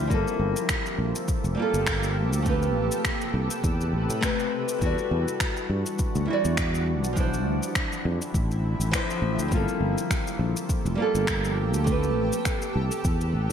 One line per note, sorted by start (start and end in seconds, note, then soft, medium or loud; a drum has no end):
0.00 2.42 F3 medium
0.07 0.24 G1 medium
0.07 1.53 G3 medium
0.07 1.54 A#3 medium
0.07 2.44 A#3 medium
0.07 4.77 A4 medium
0.07 kick loud
0.07 shaker soft
0.11 1.55 F4 medium
0.11 4.78 G4 medium
0.11 1.57 A4 medium
0.28 shaker soft
0.39 0.53 G1 medium
0.56 shaker medium
0.69 finger snap medium
0.69 kick loud
0.69 shaker medium
0.86 shaker soft
0.98 1.12 A#1 medium
1.15 shaker medium
1.28 kick loud
1.28 shaker medium
1.44 1.55 F1 loud
1.44 shaker soft
1.55 2.41 G3 medium
1.55 2.42 A#3 medium
1.59 2.44 F4 medium
1.59 2.45 A4 medium
1.74 2.32 G1 medium
1.74 shaker medium
1.87 finger snap loud
1.87 kick loud
1.87 shaker medium
2.03 shaker soft
2.32 2.75 D2 medium
2.32 shaker medium
2.42 4.17 A3 medium
2.42 4.19 C4 medium
2.42 kick loud
2.42 shaker medium
2.47 4.79 C3 medium
2.47 4.20 G4 medium
2.47 4.80 B4 medium
2.47 4.21 B4 medium
2.62 shaker soft
2.75 2.89 A1 medium
2.92 shaker medium
3.05 finger snap medium
3.05 kick loud
3.05 shaker soft
3.21 shaker soft
3.34 3.47 C2 medium
3.50 shaker medium
3.64 3.92 E2 medium
3.64 kick loud
3.64 shaker medium
3.81 shaker soft
3.93 4.06 A1 medium
4.10 4.20 A2 medium
4.10 shaker medium
4.21 4.77 A3 medium
4.21 4.78 C4 medium
4.21 4.78 G4 medium
4.21 4.79 B4 loud
4.21 finger snap medium
4.21 kick loud
4.21 shaker medium
4.39 shaker soft
4.68 shaker medium
4.78 4.95 E2 medium
4.78 7.15 E3 medium
4.78 6.24 G3 medium
4.78 7.14 G3 medium
4.78 7.15 D4 medium
4.78 6.25 E4 medium
4.78 7.15 F#4 medium
4.78 kick loud
4.78 shaker medium
4.83 6.26 F#4 medium
4.83 6.27 D5 medium
4.98 shaker soft
5.11 5.24 E2 medium
5.28 shaker medium
5.40 finger snap medium
5.40 kick loud
5.40 shaker soft
5.57 shaker soft
5.70 5.83 G2 medium
5.86 shaker medium
5.99 kick medium
5.99 shaker medium
6.15 6.26 D2 medium
6.15 shaker soft
6.25 7.12 G3 medium
6.25 7.13 E4 medium
6.30 7.14 F#4 medium
6.30 7.16 D5 medium
6.45 7.03 E2 medium
6.45 shaker medium
6.57 finger snap medium
6.57 kick loud
6.57 shaker soft
6.74 shaker soft
7.03 7.46 B1 medium
7.03 shaker medium
7.13 9.49 D3 medium
7.13 8.88 F3 medium
7.13 11.83 F3 medium
7.13 9.49 C4 medium
7.13 8.89 D4 medium
7.13 9.49 E4 medium
7.13 kick loud
7.13 shaker soft
7.18 8.90 E4 medium
7.18 8.92 C5 medium
7.34 shaker soft
7.46 7.59 D2 medium
7.63 shaker medium
7.75 finger snap medium
7.75 kick loud
7.75 shaker medium
7.92 shaker soft
8.05 8.18 F2 medium
8.22 shaker medium
8.34 8.75 A1 medium
8.34 kick loud
8.34 shaker medium
8.51 shaker soft
8.80 8.90 A1 medium
8.80 shaker medium
8.91 9.48 F3 medium
8.91 9.48 D4 medium
8.91 9.49 E4 medium
8.91 9.50 C5 loud
8.91 finger snap medium
8.91 kick loud
8.91 shaker medium
9.10 shaker soft
9.22 9.36 A1 medium
9.39 9.49 D2 medium
9.39 shaker medium
9.48 9.65 G1 medium
9.48 10.94 G3 medium
9.48 10.95 A#3 medium
9.48 11.85 A#3 medium
9.48 13.52 G4 medium
9.48 13.52 A4 medium
9.48 kick loud
9.48 shaker soft
9.53 10.96 F4 medium
9.53 10.98 A4 medium
9.68 shaker soft
9.80 9.94 G1 medium
9.98 shaker medium
10.10 finger snap medium
10.10 kick medium
10.10 shaker soft
10.27 shaker soft
10.39 10.53 A#1 medium
10.56 shaker medium
10.69 kick medium
10.69 shaker medium
10.85 10.96 F1 loud
10.85 shaker soft
10.95 11.82 G3 medium
10.95 11.83 A#3 medium
11.00 11.85 F4 medium
11.00 11.86 A4 medium
11.15 11.74 G1 loud
11.15 shaker medium
11.27 finger snap medium
11.27 kick loud
11.27 shaker medium
11.44 shaker soft
11.74 12.17 D2 medium
11.74 shaker medium
11.84 13.52 C3 medium
11.84 13.52 A3 medium
11.84 13.52 C4 medium
11.84 13.52 B4 medium
11.84 kick loud
11.84 shaker soft
11.89 13.52 G4 medium
11.89 13.52 B4 medium
12.03 shaker soft
12.17 12.30 A1 loud
12.32 shaker medium
12.45 finger snap medium
12.45 kick loud
12.45 shaker soft
12.62 shaker soft
12.76 12.89 C2 medium
12.91 shaker medium
13.04 13.33 E2 medium
13.04 kick loud
13.04 shaker medium
13.21 shaker soft
13.33 13.47 A1 medium